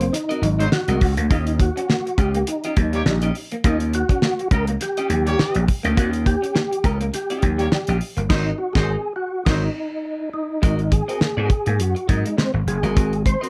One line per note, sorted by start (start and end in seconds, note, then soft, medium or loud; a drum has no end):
0.00 0.09 A#3 medium
0.00 0.15 C4 medium
0.00 muted clean electric guitar stroke soft
0.00 closed hi-hat medium
0.13 0.68 D#4 loud
0.13 muted clean electric guitar stroke soft
0.13 snare soft
0.13 closed hi-hat loud
0.29 0.42 C4 medium
0.29 0.42 F#4 medium
0.29 0.43 A#4 medium
0.29 0.42 D#5 medium
0.29 closed hi-hat soft
0.42 0.66 G#1 medium
0.42 0.53 F#3 medium
0.42 muted clean electric guitar stroke soft
0.42 closed hi-hat medium
0.59 0.68 F#3 loud
0.59 0.67 G#3 medium
0.59 0.68 D#4 medium
0.59 0.68 C5 loud
0.59 muted clean electric guitar stroke soft
0.59 closed hi-hat soft
0.72 1.15 F#4 loud
0.72 muted clean electric guitar stroke soft
0.72 snare loud
0.88 0.99 C2 medium
0.88 0.97 G#3 medium
0.88 1.00 C4 medium
0.88 1.01 F#4 medium
0.88 1.01 A#4 medium
0.88 1.01 D#5 medium
0.88 closed hi-hat medium
1.01 1.15 C#2 medium
1.01 muted clean electric guitar stroke soft
1.01 kick medium
1.01 open hi-hat medium
1.17 1.28 D2 loud
1.17 1.26 A#3 medium
1.17 muted clean electric guitar stroke medium
1.17 closed hi-hat medium
1.30 1.68 D#2 loud
1.30 1.41 A#3 medium
1.30 1.58 C#4 medium
1.30 1.61 D#4 medium
1.30 1.58 F4 medium
1.30 1.58 G4 medium
1.30 1.59 D#5 medium
1.30 kick loud
1.30 closed hi-hat medium
1.47 closed hi-hat medium
1.60 2.21 F#4 medium
1.60 muted clean electric guitar stroke soft
1.60 kick loud
1.60 closed hi-hat medium
1.76 1.85 C#4 medium
1.76 muted clean electric guitar stroke soft
1.76 closed hi-hat soft
1.89 2.00 A#3 medium
1.89 muted clean electric guitar stroke soft
1.89 snare loud
2.07 muted clean electric guitar stroke soft
2.07 closed hi-hat soft
2.18 2.42 C#2 medium
2.18 2.31 C#4 medium
2.18 2.31 F4 medium
2.18 2.49 G4 medium
2.18 2.32 G4 medium
2.18 2.32 D#5 medium
2.18 kick medium
2.18 closed hi-hat medium
2.34 2.43 A#3 medium
2.34 muted clean electric guitar stroke soft
2.34 closed hi-hat medium
2.47 3.31 D#4 medium
2.47 muted clean electric guitar stroke soft
2.47 closed hi-hat loud
2.64 2.76 C#4 medium
2.64 2.76 F4 medium
2.64 2.77 G4 medium
2.64 2.77 D#5 loud
2.64 closed hi-hat soft
2.77 3.01 D#2 medium
2.77 2.86 F#3 medium
2.77 muted clean electric guitar stroke soft
2.77 kick loud
2.77 closed hi-hat medium
2.93 3.01 G3 medium
2.93 3.01 A#3 medium
2.93 3.02 G4 loud
2.93 3.02 C#5 loud
2.93 muted clean electric guitar stroke soft
2.93 closed hi-hat soft
3.06 3.30 A#1 loud
3.06 3.16 G3 medium
3.06 muted clean electric guitar stroke soft
3.06 snare loud
3.22 3.35 C#4 medium
3.22 3.36 F4 medium
3.22 3.35 G4 medium
3.22 3.35 D#5 medium
3.22 muted clean electric guitar stroke soft
3.22 closed hi-hat medium
3.35 muted clean electric guitar stroke soft
3.35 open hi-hat medium
3.52 3.60 A#3 medium
3.52 muted clean electric guitar stroke soft
3.52 closed hi-hat medium
3.64 4.01 D#2 loud
3.64 3.74 A#3 medium
3.64 3.91 C#4 medium
3.64 3.79 D#4 medium
3.64 3.92 F4 medium
3.64 3.92 G4 medium
3.64 3.92 D#5 medium
3.64 kick loud
3.64 closed hi-hat medium
3.80 closed hi-hat medium
3.93 4.48 F#4 loud
3.93 muted clean electric guitar stroke soft
3.93 closed hi-hat medium
4.09 4.18 C#4 medium
4.09 muted clean electric guitar stroke soft
4.09 kick medium
4.09 closed hi-hat soft
4.22 4.33 A#3 medium
4.22 muted clean electric guitar stroke soft
4.22 snare loud
4.39 muted clean electric guitar stroke soft
4.39 closed hi-hat soft
4.51 4.75 C#2 medium
4.51 4.64 C#4 medium
4.51 4.65 F4 medium
4.51 4.65 G4 medium
4.51 4.65 A#4 loud
4.51 4.66 D#5 medium
4.51 kick loud
4.51 closed hi-hat medium
4.67 4.76 A#3 medium
4.67 muted clean electric guitar stroke soft
4.67 closed hi-hat medium
4.81 5.65 G4 medium
4.81 muted clean electric guitar stroke soft
4.81 snare soft
4.81 closed hi-hat loud
4.97 5.10 C#4 medium
4.97 5.10 F4 medium
4.97 5.10 G4 medium
4.97 5.10 D#5 medium
4.97 closed hi-hat soft
5.10 5.34 D#2 medium
5.10 5.20 F#3 medium
5.10 muted clean electric guitar stroke soft
5.10 closed hi-hat medium
5.26 5.34 G3 medium
5.26 5.62 A#3 loud
5.26 5.62 G4 loud
5.26 5.62 C#5 loud
5.26 muted clean electric guitar stroke medium
5.26 closed hi-hat medium
5.39 muted slap bass stroke soft
5.39 muted clean electric guitar stroke soft
5.39 snare loud
5.55 5.66 A#1 medium
5.55 5.63 G3 medium
5.55 muted clean electric guitar stroke soft
5.55 closed hi-hat medium
5.68 muted clean electric guitar stroke soft
5.68 kick medium
5.68 open hi-hat medium
5.83 5.95 D2 medium
5.83 5.91 A#3 medium
5.83 5.97 C#4 medium
5.83 5.98 F4 medium
5.83 5.97 G4 medium
5.83 5.97 D#5 medium
5.83 closed hi-hat medium
5.96 6.34 D#2 loud
5.96 6.06 A#3 medium
5.96 6.09 C4 medium
5.96 6.10 E4 medium
5.96 6.10 F#4 medium
5.96 6.11 D5 medium
5.96 kick loud
5.96 closed hi-hat medium
6.09 6.25 C#4 medium
6.09 6.25 F4 medium
6.09 6.25 G4 medium
6.09 6.26 D#5 medium
6.13 closed hi-hat medium
6.26 6.86 G4 loud
6.26 muted clean electric guitar stroke soft
6.26 kick medium
6.26 closed hi-hat medium
6.42 6.50 C#4 medium
6.42 muted clean electric guitar stroke soft
6.42 closed hi-hat soft
6.55 6.65 A#3 medium
6.55 muted clean electric guitar stroke medium
6.55 snare loud
6.71 muted clean electric guitar stroke soft
6.71 closed hi-hat medium
6.84 7.08 C#2 medium
6.84 6.97 C#4 medium
6.84 6.97 F4 medium
6.84 6.98 G4 medium
6.84 6.98 A#4 loud
6.84 6.98 D#5 medium
6.84 kick medium
6.84 closed hi-hat medium
7.01 7.08 A#3 medium
7.01 muted clean electric guitar stroke medium
7.01 closed hi-hat medium
7.14 7.97 G4 medium
7.14 muted clean electric guitar stroke soft
7.14 snare soft
7.14 closed hi-hat loud
7.30 7.42 C#4 medium
7.30 7.42 F4 medium
7.30 7.43 G4 medium
7.30 7.43 D#5 medium
7.30 closed hi-hat soft
7.42 7.67 D#2 medium
7.42 7.52 F#3 medium
7.42 muted clean electric guitar stroke soft
7.42 kick loud
7.42 closed hi-hat medium
7.58 7.66 G3 medium
7.58 7.67 A#3 medium
7.58 7.67 G4 medium
7.58 7.67 C#5 medium
7.58 muted clean electric guitar stroke soft
7.58 closed hi-hat medium
7.72 7.81 G3 medium
7.72 muted slap bass stroke medium
7.72 muted clean electric guitar stroke soft
7.72 snare loud
7.87 7.99 A#1 medium
7.87 8.01 C#4 medium
7.87 8.01 F4 medium
7.87 8.01 G4 medium
7.87 8.01 D#5 medium
7.87 muted clean electric guitar stroke soft
7.87 closed hi-hat medium
8.01 muted clean electric guitar stroke soft
8.01 open hi-hat medium
8.17 8.28 G1 medium
8.17 8.25 A#3 medium
8.17 muted clean electric guitar stroke soft
8.17 closed hi-hat soft
8.29 8.50 G#1 loud
8.29 8.46 F#3 medium
8.29 8.51 C4 loud
8.29 8.60 D#4 medium
8.29 8.46 D#4 loud
8.29 8.51 F#4 medium
8.29 8.52 A#4 medium
8.29 8.46 C5 loud
8.29 8.52 D#5 medium
8.29 kick loud
8.29 snare loud
8.29 crash medium
8.58 8.75 F#4 medium
8.73 8.95 G#1 medium
8.73 8.90 F#3 loud
8.73 8.95 C4 medium
8.73 8.90 D#4 loud
8.73 8.95 F#4 loud
8.73 9.13 G#4 loud
8.73 8.96 A#4 loud
8.73 8.90 C5 loud
8.73 kick loud
8.73 snare loud
8.78 8.96 D#5 loud
9.16 9.44 F#4 medium
9.45 9.67 G#1 loud
9.45 9.62 F#3 loud
9.45 9.68 C4 loud
9.45 10.29 D#4 medium
9.45 9.62 D#4 loud
9.45 9.68 F#4 loud
9.45 9.67 A#4 loud
9.45 9.62 C5 loud
9.45 9.67 D#5 loud
9.45 kick loud
9.45 snare loud
9.45 crash medium
10.34 10.94 D#4 medium
10.62 11.00 G#1 loud
10.62 10.72 G#3 medium
10.62 10.79 C4 medium
10.62 10.79 F#4 medium
10.62 10.80 A#4 medium
10.62 10.80 D#5 medium
10.62 kick loud
10.62 closed hi-hat medium
10.79 closed hi-hat soft
10.92 11.82 G#4 medium
10.92 muted clean electric guitar stroke soft
10.92 kick loud
10.92 closed hi-hat medium
11.08 11.16 C4 medium
11.08 11.19 C4 soft
11.08 11.19 F#4 soft
11.08 11.19 A#4 medium
11.08 11.19 D#5 medium
11.08 closed hi-hat medium
11.21 11.31 A#3 medium
11.21 muted slap bass stroke soft
11.21 muted clean electric guitar stroke soft
11.21 snare loud
11.37 11.48 G#2 loud
11.37 11.49 C4 medium
11.37 11.49 F#4 medium
11.37 11.50 A#4 medium
11.37 11.50 D#5 medium
11.37 muted clean electric guitar stroke soft
11.50 muted clean electric guitar stroke soft
11.50 kick medium
11.50 closed hi-hat medium
11.66 11.79 G#2 medium
11.66 11.75 A#3 medium
11.66 muted clean electric guitar stroke soft
11.66 closed hi-hat medium
11.79 11.93 F#2 loud
11.79 12.08 F#4 medium
11.79 muted clean electric guitar stroke soft
11.79 closed hi-hat loud
11.95 muted clean electric guitar stroke soft
11.95 closed hi-hat soft
12.09 12.22 G#2 loud
12.09 12.19 F#3 medium
12.09 12.25 C4 medium
12.09 12.37 D#4 medium
12.09 12.25 F#4 medium
12.09 12.24 A#4 medium
12.09 12.24 D#5 medium
12.09 kick medium
12.09 closed hi-hat medium
12.25 12.33 G#3 medium
12.25 muted clean electric guitar stroke soft
12.25 closed hi-hat medium
12.37 12.48 G#3 medium
12.37 12.52 C4 medium
12.37 muted clean electric guitar stroke soft
12.37 snare loud
12.54 12.65 G#1 medium
12.54 muted clean electric guitar stroke medium
12.67 12.81 F#1 medium
12.67 13.22 G#4 medium
12.67 closed hi-hat medium
12.83 12.97 G1 medium
12.83 12.92 A#3 medium
12.83 12.94 C4 medium
12.83 12.95 F#4 medium
12.83 12.96 A#4 medium
12.83 12.96 D#5 medium
12.83 closed hi-hat soft
12.95 13.34 G#1 loud
12.95 13.12 C4 medium
12.95 13.13 F#4 medium
12.95 13.13 A#4 medium
12.95 13.13 D#5 medium
12.95 kick loud
12.95 closed hi-hat medium
13.13 closed hi-hat soft
13.26 13.49 C5 medium
13.26 muted clean electric guitar stroke soft
13.26 kick medium
13.26 closed hi-hat medium
13.41 13.49 C4 soft
13.41 13.49 F#4 medium
13.41 13.49 A#4 medium
13.41 13.49 D#5 medium
13.41 closed hi-hat medium